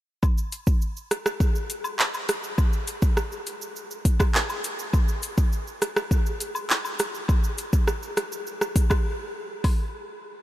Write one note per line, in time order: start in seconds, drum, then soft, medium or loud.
0.23 kick loud
0.23 high woodblock medium
0.23 shaker medium
0.38 shaker medium
0.52 closed hi-hat medium
0.52 cabasa medium
0.52 shaker medium
0.67 kick loud
0.67 shaker medium
0.82 shaker medium
0.97 shaker medium
1.11 cross-stick medium
1.11 closed hi-hat medium
1.11 cabasa medium
1.11 shaker soft
1.26 cross-stick loud
1.26 shaker medium
1.40 kick medium
1.40 shaker medium
1.55 shaker medium
1.70 closed hi-hat medium
1.70 cabasa medium
1.70 shaker medium
1.84 high woodblock medium
1.84 shaker medium
1.99 clap medium
1.99 shaker medium
2.14 high woodblock medium
2.14 shaker medium
2.29 cross-stick medium
2.29 closed hi-hat medium
2.29 cabasa medium
2.29 shaker medium
2.44 shaker medium
2.58 kick loud
2.58 high woodblock medium
2.58 shaker medium
2.73 shaker medium
2.87 closed hi-hat medium
2.87 cabasa medium
2.87 shaker medium
3.02 kick loud
3.02 shaker medium
3.17 cross-stick medium
3.17 shaker medium
3.32 shaker medium
3.47 closed hi-hat medium
3.47 cabasa medium
3.47 shaker medium
3.62 shaker medium
3.76 shaker medium
3.91 shaker medium
4.05 kick medium
4.05 closed hi-hat medium
4.05 cabasa medium
4.05 shaker medium
4.20 kick loud
4.20 cross-stick loud
4.20 high woodblock medium
4.20 shaker medium
4.35 clap loud
4.35 shaker medium
4.50 high woodblock medium
4.50 shaker medium
4.64 closed hi-hat medium
4.64 cabasa medium
4.64 shaker medium
4.79 shaker medium
4.93 kick loud
4.93 high woodblock medium
4.93 shaker medium
5.08 shaker medium
5.23 closed hi-hat medium
5.23 cabasa medium
5.23 shaker medium
5.37 kick loud
5.37 shaker medium
5.52 shaker medium
5.67 shaker medium
5.82 cross-stick medium
5.82 closed hi-hat medium
5.82 cabasa medium
5.82 shaker medium
5.96 cross-stick loud
5.96 shaker medium
6.11 kick medium
6.11 shaker medium
6.26 shaker medium
6.40 closed hi-hat medium
6.40 cabasa medium
6.40 shaker medium
6.55 high woodblock medium
6.55 shaker medium
6.70 clap loud
6.70 shaker medium
6.85 high woodblock medium
6.85 shaker medium
6.99 cross-stick medium
6.99 closed hi-hat medium
6.99 cabasa medium
6.99 shaker medium
7.15 shaker medium
7.28 kick loud
7.28 high woodblock medium
7.28 shaker medium
7.44 shaker medium
7.58 closed hi-hat medium
7.58 cabasa medium
7.58 shaker medium
7.73 kick loud
7.73 shaker medium
7.88 cross-stick medium
7.88 shaker medium
8.03 shaker medium
8.17 cross-stick medium
8.17 closed hi-hat medium
8.17 cabasa medium
8.17 shaker medium
8.32 shaker medium
8.47 shaker medium
8.61 cross-stick medium
8.61 shaker medium
8.76 kick loud
8.76 closed hi-hat medium
8.76 cabasa medium
8.76 shaker medium
8.90 kick loud
8.90 cross-stick loud
8.90 high woodblock medium
8.90 shaker medium
9.64 kick loud
9.64 open hi-hat medium
9.64 high woodblock medium